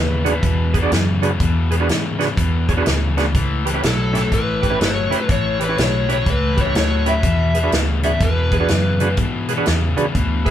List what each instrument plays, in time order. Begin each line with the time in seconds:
Already playing: fingered electric bass D#2, overdriven electric guitar E2 C#3, electric slide guitar B4
0.24 overdriven electric guitar E2 C#3, tonewheel organ D4 F#4 G#4 B4, closed hi-hat
0.43 fingered electric bass E2, overdriven electric guitar E2 B2, kick, closed hi-hat
0.74 overdriven electric guitar E2 B2, tonewheel organ G#4 B4, kick, closed hi-hat
0.82 tonewheel organ D4 F#4 G#4 D5
0.92 overdriven electric guitar E2 C#3, fingered electric bass F#2, snare, closed hi-hat
1.22 overdriven electric guitar E2 C#3, tonewheel organ D4 F#4 G#4 B4, closed hi-hat
1.40 overdriven electric guitar E2 B2, fingered electric bass E2, kick, closed hi-hat
1.71 overdriven electric guitar E2 B2, tonewheel organ G#4 B4, closed hi-hat
1.80 tonewheel organ D4 F#4 G#4 B4
1.89 overdriven electric guitar E2 C#3, fingered electric bass G#2, snare, closed hi-hat
2.19 overdriven electric guitar E2 C#3, tonewheel organ D4 F#4 G#4 B4, snare, closed hi-hat
2.37 overdriven electric guitar E2 B2, fingered electric bass E2, kick, closed hi-hat
2.68 overdriven electric guitar E2 B2, tonewheel organ G#4 C#5, kick, closed hi-hat
2.77 tonewheel organ D4 F#4 G#4 B4
2.85 fingered electric bass D2, overdriven electric guitar E2 C#3, snare, closed hi-hat
3.17 overdriven electric guitar E2 C#3, tonewheel organ D4 F#4 G#4 B4, snare, closed hi-hat
3.35 fingered electric bass C#2, overdriven electric guitar A2 E3, kick, closed hi-hat
3.65 overdriven electric guitar A2 E3, tonewheel organ G4 B4, closed hi-hat
3.74 tonewheel organ C#4 E4 G4 B4
3.83 fingered electric bass B1, overdriven electric guitar A2 F#3, electric slide guitar A4, snare, closed hi-hat
4.13 overdriven electric guitar A2 F#3, tonewheel organ C#4 E4 G4 A4, snare, closed hi-hat
4.30 fingered electric bass A1, overdriven electric guitar A2 E3, electric slide guitar B4, kick, closed hi-hat
4.62 overdriven electric guitar A2 E3, tonewheel organ G4 B4, kick, closed hi-hat
4.70 tonewheel organ C#4 E4 G4 B4
4.78 fingered electric bass G1, overdriven electric guitar A2 F#3, snare, closed hi-hat
4.83 electric slide guitar C#5
5.10 overdriven electric guitar A2 F#3, tonewheel organ C#4 E4 G4 B4, muted fingered electric bass stroke, closed hi-hat
5.28 fingered electric bass A1, overdriven electric guitar A2 E3, electric slide guitar C#5, kick, closed hi-hat
5.59 overdriven electric guitar A2 E3, tonewheel organ G4 B4, closed hi-hat
5.64 electric slide guitar B4
5.68 tonewheel organ C#4 E4 G4 C#5
5.77 fingered electric bass B1, overdriven electric guitar A2 F#3, snare, closed hi-hat
5.82 electric slide guitar C#5
6.08 overdriven electric guitar A2 F#3, tonewheel organ C#4 E4 G4 B4, closed hi-hat
6.13 electric slide guitar C#5
6.26 fingered electric bass C#2, overdriven electric guitar A2 E3, kick, closed hi-hat
6.30 electric slide guitar B4
6.57 overdriven electric guitar A2 E3, tonewheel organ G4 B4, kick, closed hi-hat
6.61 electric slide guitar C#5
6.65 tonewheel organ C#4 E4 G4 B4
6.74 fingered electric bass D2, overdriven electric guitar A2 F#3, snare, closed hi-hat
6.78 electric slide guitar C#5
7.06 overdriven electric guitar A2 F#3, tonewheel organ C#4 E4 G4 B4, electric slide guitar E5, closed hi-hat
7.22 overdriven electric guitar E2 B2, fingered electric bass E2, kick, closed hi-hat
7.54 overdriven electric guitar E2 B2, tonewheel organ G#4 B4, closed hi-hat
7.63 tonewheel organ D4 F#4 G#4 B4
7.72 fingered electric bass D2, overdriven electric guitar E2 C#3, snare, closed hi-hat
8.03 overdriven electric guitar E2 C#3, tonewheel organ D4 F#4 G#4 B4, electric slide guitar E5, closed hi-hat
8.20 fingered electric bass E2, overdriven electric guitar E2 B2, electric slide guitar B4, kick, closed hi-hat
8.51 overdriven electric guitar E2 B2, tonewheel organ G#4 B4, kick, closed hi-hat
8.60 tonewheel organ D4 F#4 G#4 B4
8.68 overdriven electric guitar E2 C#3, fingered electric bass F#2, snare, closed hi-hat
9.00 overdriven electric guitar E2 C#3, tonewheel organ D4 F#4 G#4 B4, closed hi-hat
9.17 overdriven electric guitar E2 B2, fingered electric bass G#2, kick, closed hi-hat
9.48 overdriven electric guitar E2 B2, tonewheel organ G#4 B4, closed hi-hat
9.57 tonewheel organ D4 F#4 G#4 B4
9.66 overdriven electric guitar E2 C#3, fingered electric bass E2, snare, closed hi-hat
9.97 overdriven electric guitar E2 C#3, tonewheel organ D4 F#4 G#4 B4, muted fingered electric bass stroke, closed hi-hat
10.15 fingered electric bass D2, overdriven electric guitar E2 B2, kick, closed hi-hat
10.45 overdriven electric guitar E2 B2, tonewheel organ G#4 B4 E5, kick, closed hi-hat